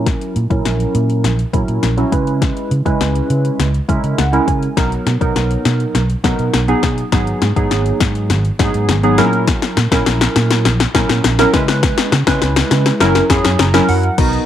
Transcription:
Already playing: fingered electric bass A#2, synth keys F#3 C#4 E4 A#4
0.06 kick, snare, closed hi-hat
0.21 closed hi-hat
0.36 fingered electric bass A#2, closed hi-hat
0.50 fingered electric bass A#2, synth keys F#3 C#4 E4 A#4, kick, closed hi-hat
0.65 fingered electric bass A#1, snare, closed hi-hat
0.80 closed hi-hat
0.95 fingered electric bass A#2, closed hi-hat
1.10 closed hi-hat
1.24 fingered electric bass A#1, snare, closed hi-hat
1.39 closed hi-hat
1.53 fingered electric bass A#2, synth keys F#3 C#4 E4 A#4, kick, closed hi-hat
1.68 fingered electric bass A#2, closed hi-hat
1.83 fingered electric bass A#1, snare, closed hi-hat
1.97 synth keys F#3 C#4 E4 F#4, closed hi-hat
2.12 fingered electric bass C#3, synth keys G#3 C#4 E4 B4, kick, closed hi-hat
2.27 closed hi-hat
2.42 kick, snare, closed hi-hat
2.57 closed hi-hat
2.71 fingered electric bass C#3, closed hi-hat
2.85 fingered electric bass C#3, synth keys G#3 C#4 E4 B4, kick, closed hi-hat
3.01 fingered electric bass C#2, snare, closed hi-hat
3.15 closed hi-hat
3.30 fingered electric bass C#3, closed hi-hat
3.45 closed hi-hat
3.59 fingered electric bass C#2, snare, closed hi-hat
3.74 closed hi-hat
3.89 fingered electric bass C#3, synth keys G#3 C#4 E4 A#4 E5, kick, closed hi-hat
4.04 fingered electric bass C#3, closed hi-hat
4.18 fingered electric bass C#2, synth keys F#5, snare, closed hi-hat
4.33 synth keys G#3 C#4 E4 A#4, closed hi-hat
4.48 fingered electric bass C#3, synth keys G#5, kick, closed hi-hat
4.63 closed hi-hat
4.77 fingered electric bass B1, synth keys F#3 B3 D#4 A#4, kick, snare, closed hi-hat
4.92 closed hi-hat
5.06 fingered electric bass B2, snare, closed hi-hat
5.21 fingered electric bass B2, synth keys F#3 B3 D#4 A#4, kick, closed hi-hat
5.36 fingered electric bass B1, snare, closed hi-hat
5.51 closed hi-hat
5.65 fingered electric bass B2, snare, closed hi-hat
5.80 closed hi-hat
5.95 fingered electric bass B1, snare, closed hi-hat
6.10 closed hi-hat
6.24 fingered electric bass B2, synth keys F#3 B3 D#4 A#4, kick, snare, closed hi-hat
6.39 fingered electric bass B2, closed hi-hat
6.53 fingered electric bass B1, snare, closed hi-hat
6.68 synth keys F#3 B3 D#4 G#4, closed hi-hat
6.83 fingered electric bass B2, kick, snare, closed hi-hat
6.98 closed hi-hat
7.12 fingered electric bass G#1, synth keys F#3 B3 D#4 G#4, kick, snare, closed hi-hat
7.27 closed hi-hat
7.42 fingered electric bass G#2, snare, closed hi-hat
7.56 fingered electric bass G#2, synth keys F#3 B3 D#4 G#4, kick, closed hi-hat
7.71 fingered electric bass G#1, snare, closed hi-hat
7.86 closed hi-hat
8.00 fingered electric bass G#2, kick, snare, closed hi-hat
8.15 closed hi-hat
8.30 fingered electric bass G#1, snare, closed hi-hat
8.45 closed hi-hat
8.59 fingered electric bass G#2, synth keys F#3 B3 D#4 G#4, kick, snare, closed hi-hat
8.74 fingered electric bass G#2, closed hi-hat
8.89 fingered electric bass G#1, snare, closed hi-hat
9.03 synth keys F#3 B3 D#4 G#4, closed hi-hat
9.18 fingered electric bass A#2, synth keys F#3 C#4 E4 A#4, snare, closed hi-hat
9.33 closed hi-hat
9.48 kick, snare, closed hi-hat
9.62 snare, closed hi-hat
9.77 fingered electric bass A#2, snare, closed hi-hat
9.91 fingered electric bass A#2, synth keys F#3 C#4 E4 A#4, kick, snare, closed hi-hat
10.06 fingered electric bass A#1, snare, closed hi-hat
10.21 snare, closed hi-hat
10.36 fingered electric bass A#2, snare, closed hi-hat
10.51 snare, closed hi-hat
10.65 fingered electric bass A#1, snare, closed hi-hat
10.80 snare, closed hi-hat
10.94 fingered electric bass A#2, synth keys F#3 C#4 E4 A#4, kick, snare, closed hi-hat
11.09 fingered electric bass A#2, snare, closed hi-hat
11.24 fingered electric bass A#1, snare, closed hi-hat
11.39 synth keys F#3 C#4 E4 A#4, snare, closed hi-hat
11.53 fingered electric bass C#3, synth keys G#3 C#4 E4 B4, kick, snare, closed hi-hat
11.68 snare, closed hi-hat
11.83 kick, snare, closed hi-hat
11.98 snare, closed hi-hat
12.12 fingered electric bass C#3, snare, closed hi-hat
12.27 fingered electric bass C#3, synth keys G#3 C#4 E4 B4, kick, snare, closed hi-hat
12.42 fingered electric bass C#2, snare, closed hi-hat
12.56 snare, closed hi-hat
12.71 fingered electric bass C#3, snare, closed hi-hat
12.86 snare, closed hi-hat
13.00 fingered electric bass F#1, synth keys F#3 C#4 E4 A#4, snare, closed hi-hat
13.15 snare, closed hi-hat
13.30 fingered electric bass F#2, synth keys F#3 C#4 E4 G#4, kick, snare, closed hi-hat
13.45 fingered electric bass F#2, snare, closed hi-hat
13.59 fingered electric bass F#1, synth keys A#5, snare, closed hi-hat
13.74 synth keys F#3 C#4 E4 A#4, snare, closed hi-hat
13.89 fingered electric bass F#2, synth keys F#5, open hi-hat
14.03 closed hi-hat
14.18 fingered electric bass B1, synth keys B3 D#4 F#4 A#4 D#5, kick, closed hi-hat, crash
14.33 closed hi-hat

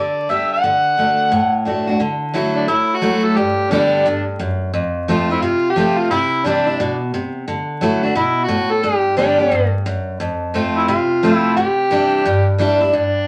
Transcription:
Already playing: steel-string acoustic guitar D3, harmonica D5
0.29 steel-string acoustic guitar D3 G3 B3 G4, harmonica E5
0.53 harmonica F#5
0.64 steel-string acoustic guitar D3
0.97 steel-string acoustic guitar D3 A3 D4 F#4
1.32 steel-string acoustic guitar A2
1.65 steel-string acoustic guitar D3 A3 D4 F#4
1.87 steel-string acoustic guitar D4 F#4
2.00 steel-string acoustic guitar D3
2.33 steel-string acoustic guitar F#3 A3 E4 F#4
2.55 harmonica D4
2.68 steel-string acoustic guitar A2, harmonica E4
2.96 harmonica F#4
3.02 steel-string acoustic guitar F#3 A3 E4 F#4
3.24 harmonica A4
3.37 steel-string acoustic guitar G2, harmonica G4
3.70 steel-string acoustic guitar D3 G3 B3 G4, harmonica D4
4.06 steel-string acoustic guitar G2
4.39 steel-string acoustic guitar F#2
4.74 steel-string acoustic guitar F2
5.08 steel-string acoustic guitar F3 A3 C4 F4
5.30 steel-string acoustic guitar C4 F4, harmonica E4
5.41 steel-string acoustic guitar C3, harmonica F4
5.70 harmonica G4
5.76 steel-string acoustic guitar F3 A3 C4 F4
5.98 harmonica F4
6.10 steel-string acoustic guitar C3, harmonica E4
6.44 steel-string acoustic guitar E3 G3 D4 E4, harmonica D4
6.67 steel-string acoustic guitar D4 E4
6.80 steel-string acoustic guitar B2
7.14 steel-string acoustic guitar C3
7.48 steel-string acoustic guitar D3
7.81 steel-string acoustic guitar F#3 A3 E4 F#4
8.03 harmonica D4, steel-string acoustic guitar E4 F#4
8.15 steel-string acoustic guitar B2, harmonica E4
8.44 harmonica F#4
8.48 steel-string acoustic guitar A2
8.71 harmonica A4
8.83 steel-string acoustic guitar G2, harmonica G4
9.17 steel-string acoustic guitar D3 G3 B3 G4, harmonica D4
9.39 steel-string acoustic guitar B3 G4
9.51 steel-string acoustic guitar G2
9.86 steel-string acoustic guitar F#2
10.20 steel-string acoustic guitar F2
10.54 steel-string acoustic guitar F3 A3 C4 F4
10.77 harmonica E4
10.88 steel-string acoustic guitar C3, harmonica F4
11.23 steel-string acoustic guitar F3 A3 C4 F4
11.34 harmonica E4
11.56 steel-string acoustic guitar C3, harmonica G4
11.91 steel-string acoustic guitar E3 G3 D4 E4
12.26 steel-string acoustic guitar G2
12.58 steel-string acoustic guitar E3 G3 D4 E4
12.80 steel-string acoustic guitar D4 E4
12.93 steel-string acoustic guitar G2, harmonica D4

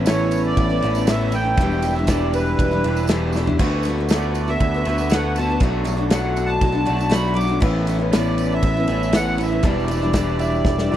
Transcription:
Already playing: picked electric bass A1, clean electric guitar A2, harmonium A4 B4 E5 B5
0.06 steel-string acoustic guitar A2 E3 B3 C#4 E4, accordion C#5, snare, ride, tambourine
0.31 ride, tambourine
0.44 accordion D5, tambourine
0.57 picked electric bass A1, kick, ride
0.69 steel-string acoustic guitar B3 C#4 E4
0.81 picked electric bass A1, steel-string acoustic guitar E3 B3 C#4, clean electric guitar E4, ride, tambourine
0.86 steel-string acoustic guitar E4
0.95 steel-string acoustic guitar B3 C#4 E4, tambourine
1.07 steel-string acoustic guitar A2 E3 B3 C#4, accordion E5, snare, ride, tambourine
1.11 steel-string acoustic guitar E4
1.21 tambourine
1.31 steel-string acoustic guitar E3 B3 C#4, clean electric guitar E4, accordion G5, ride, tambourine
1.35 steel-string acoustic guitar E4
1.44 steel-string acoustic guitar B3 C#4 E4
1.57 picked electric bass E1, steel-string acoustic guitar E2 B2 E3 G3, harmonium G4 D5, kick, ride, tambourine
1.62 steel-string acoustic guitar D4 E4
1.71 tambourine
1.82 steel-string acoustic guitar E3 G3 D4, ride, tambourine
1.88 steel-string acoustic guitar E4
1.92 accordion E5, tambourine
1.96 steel-string acoustic guitar E3 G3 D4 E4
2.07 steel-string acoustic guitar E2 B2 E3 G3 D4 E4, accordion D5, kick, snare, ride, tambourine
2.21 tambourine
2.33 accordion B4, ride, tambourine
2.47 tambourine
2.59 picked electric bass E1, kick, ride, tambourine
2.71 steel-string acoustic guitar E3 G3 D4 E4, tambourine
2.83 picked electric bass E1, steel-string acoustic guitar E3 G3 D4, clean electric guitar E4, ride
2.87 steel-string acoustic guitar E4
2.96 tambourine
3.07 steel-string acoustic guitar E2 B2 E3 G3 D4, snare, ride, tambourine
3.12 steel-string acoustic guitar E4
3.33 steel-string acoustic guitar E3, clean electric guitar E4, snare, tambourine
3.38 steel-string acoustic guitar G3 D4 E4
3.47 steel-string acoustic guitar E3 G3 D4 E4, floor tom
3.59 picked electric bass D2, steel-string acoustic guitar D3 A3 B3 F#4, harmonium A4 F#5, kick, crash, ride
3.83 steel-string acoustic guitar D3, ride, tambourine
3.88 steel-string acoustic guitar A3 B3 F#4
3.98 steel-string acoustic guitar A3 B3 F#4
4.09 steel-string acoustic guitar D3 A3 B3 F#4, snare, ride, tambourine
4.14 accordion D5
4.23 tambourine
4.35 ride, tambourine
4.47 steel-string acoustic guitar A3 B3 F#4, accordion E5, tambourine
4.60 picked electric bass D2, kick, ride
4.74 steel-string acoustic guitar A3 B3 F#4
4.84 picked electric bass D2, steel-string acoustic guitar D3, clean electric guitar F#4, ride, tambourine
4.89 steel-string acoustic guitar A3 B3 F#4
4.98 steel-string acoustic guitar A3 B3 F#4, tambourine
5.10 steel-string acoustic guitar D3 A3 B3, accordion F#5, snare, ride, tambourine
5.14 steel-string acoustic guitar F#4
5.35 steel-string acoustic guitar D3 A3, clean electric guitar F#4, accordion A5, ride, tambourine
5.39 steel-string acoustic guitar B3 F#4
5.50 steel-string acoustic guitar A3 B3 F#4
5.60 picked electric bass B1, steel-string acoustic guitar B2 F#3 A3 D4 F#4, harmonium D5, kick, ride
5.84 steel-string acoustic guitar F#3 A3 D4 F#4, ride, tambourine
5.97 steel-string acoustic guitar A3 D4 F#4
6.10 steel-string acoustic guitar B2 F#3 A3 D4 F#4, accordion F#5, snare, ride, tambourine
6.24 tambourine
6.36 ride, tambourine
6.46 accordion A5, tambourine
6.61 picked electric bass B1, kick, ride
6.72 steel-string acoustic guitar A3 D4 F#4
6.85 picked electric bass B1, steel-string acoustic guitar F#3 A3 D4 F#4, ride, tambourine
6.97 steel-string acoustic guitar A3 D4 F#4, tambourine
7.09 steel-string acoustic guitar B2 F#3 A3 D4 F#4, accordion B5, snare, ride
7.14 tambourine
7.27 tambourine
7.34 steel-string acoustic guitar F#3 A3 D4 F#4, accordion D6, ride
7.41 tambourine
7.48 steel-string acoustic guitar A3 D4 F#4
7.60 picked electric bass A1, steel-string acoustic guitar A2 E3 B3 C#4 E4, harmonium B4 E5, kick, crash
7.87 steel-string acoustic guitar E3 B3 C#4 E4, ride, tambourine
7.99 steel-string acoustic guitar B3 C#4 E4
8.12 steel-string acoustic guitar A2 E3 B3 E4, clean electric guitar C#4, snare, ride, tambourine
8.18 accordion D5
8.27 tambourine
8.38 ride, tambourine
8.52 accordion E5, tambourine
8.63 picked electric bass A1, kick, ride
8.77 steel-string acoustic guitar B3 C#4 E4
8.88 picked electric bass A1, steel-string acoustic guitar E3 B3 C#4 E4, ride, tambourine
9.03 tambourine
9.13 steel-string acoustic guitar A2 E3 B3 C#4 E4, accordion F#5, snare, ride, tambourine
9.28 tambourine
9.38 steel-string acoustic guitar E3 B3 C#4 E4, accordion E5, ride, tambourine
9.50 steel-string acoustic guitar B3 C#4 E4
9.63 picked electric bass E1, steel-string acoustic guitar E2 B2 E3 G3 D4 E4, harmonium G4 D5, accordion D5, kick, ride, tambourine
9.79 tambourine
9.88 steel-string acoustic guitar E3 G3 D4, ride, tambourine
9.92 steel-string acoustic guitar E4
10.02 steel-string acoustic guitar E3 G3 D4 E4
10.13 steel-string acoustic guitar E2 B2 E3 G3 D4, kick, snare, ride, tambourine
10.17 steel-string acoustic guitar E4
10.29 tambourine
10.39 upright piano E5, ride, tambourine
10.55 tambourine
10.65 picked electric bass E1, kick, snare, tambourine
10.78 steel-string acoustic guitar E3 G3 D4 E4, snare, tambourine
10.89 picked electric bass E1, steel-string acoustic guitar E3, clean electric guitar D4 E4, upright piano D5, tambourine
10.94 steel-string acoustic guitar G3

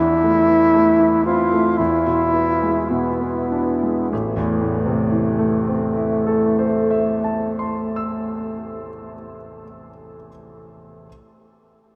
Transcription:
Already playing: grand piano E2, alto saxophone E4
0.00 grand piano E3
0.23 grand piano A3
0.48 grand piano E3
0.74 grand piano A3
1.00 grand piano E3
1.25 grand piano C4, alto saxophone F4
1.52 grand piano A3
1.78 grand piano E2, alto saxophone E4
2.06 grand piano B2
2.34 grand piano B3
2.62 grand piano G#3
2.90 grand piano B2, alto saxophone B3
3.21 grand piano B3
3.52 grand piano D4
3.83 grand piano G#3
4.11 grand piano A1, alto saxophone A3
4.37 grand piano E2
4.61 grand piano A2
4.86 grand piano C3
5.12 grand piano E3
5.38 grand piano A3
5.67 grand piano C4
5.96 grand piano E4
6.26 grand piano A4
6.59 grand piano C5
6.91 grand piano E5
7.24 grand piano A5
7.59 grand piano C6
7.96 grand piano E6

